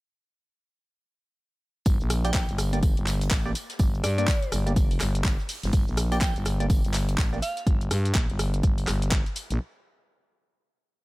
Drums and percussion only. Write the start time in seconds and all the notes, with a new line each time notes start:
1.86 kick, closed hi-hat, tambourine, shaker
2.01 shaker
2.10 cross-stick, open hi-hat, tambourine, shaker
2.24 closed hi-hat, shaker
2.34 kick, snare, clap, closed hi-hat, tambourine, shaker
2.49 closed hi-hat, shaker
2.58 cross-stick, open hi-hat, tambourine, shaker
2.73 closed hi-hat, shaker
2.83 kick, closed hi-hat, tambourine, shaker
2.97 closed hi-hat, shaker
3.07 clap, open hi-hat, tambourine, shaker
3.21 closed hi-hat, shaker
3.31 kick, snare, clap, closed hi-hat, tambourine, shaker
3.46 shaker
3.55 open hi-hat, tambourine, shaker
3.70 snare, closed hi-hat, shaker
3.79 kick, closed hi-hat, tambourine, shaker
3.94 shaker
4.04 cross-stick, open hi-hat, tambourine, shaker
4.18 closed hi-hat, shaker
4.28 kick, snare, clap, closed hi-hat, tambourine, shaker
4.42 closed hi-hat, shaker
4.52 cross-stick, open hi-hat, tambourine, shaker
4.67 closed hi-hat, shaker
4.76 kick, closed hi-hat, tambourine, shaker
4.91 open hi-hat, shaker
5.00 cross-stick, clap, open hi-hat, tambourine, shaker
5.15 closed hi-hat, shaker
5.24 kick, snare, clap, closed hi-hat, tambourine, shaker
5.39 snare, shaker
5.49 open hi-hat, shaker
5.63 snare, closed hi-hat, shaker
5.73 kick, closed hi-hat, tambourine, shaker
5.88 shaker
5.97 cross-stick, open hi-hat, tambourine, shaker
6.12 closed hi-hat, shaker
6.21 kick, snare, clap, closed hi-hat, tambourine, shaker
6.36 closed hi-hat, shaker
6.45 cross-stick, open hi-hat, tambourine, shaker
6.60 closed hi-hat, shaker
6.70 kick, closed hi-hat, tambourine, shaker
6.85 closed hi-hat, shaker
6.93 clap, open hi-hat, tambourine, shaker
7.08 closed hi-hat, shaker
7.18 kick, snare, clap, closed hi-hat, tambourine, shaker
7.33 shaker
7.42 open hi-hat, tambourine, shaker
7.57 snare, closed hi-hat, shaker
7.67 kick, closed hi-hat, shaker
7.81 closed hi-hat, shaker
7.91 cross-stick, open hi-hat, shaker
8.05 closed hi-hat, shaker
8.15 kick, clap, closed hi-hat, shaker
8.30 closed hi-hat, shaker
8.39 cross-stick, open hi-hat, shaker
8.54 closed hi-hat, shaker
8.63 kick, closed hi-hat, shaker
8.78 open hi-hat, shaker
8.87 cross-stick, clap, open hi-hat, shaker
9.02 closed hi-hat, shaker
9.12 kick, clap, closed hi-hat, shaker
9.26 closed hi-hat, shaker
9.36 open hi-hat, shaker
9.50 closed hi-hat, shaker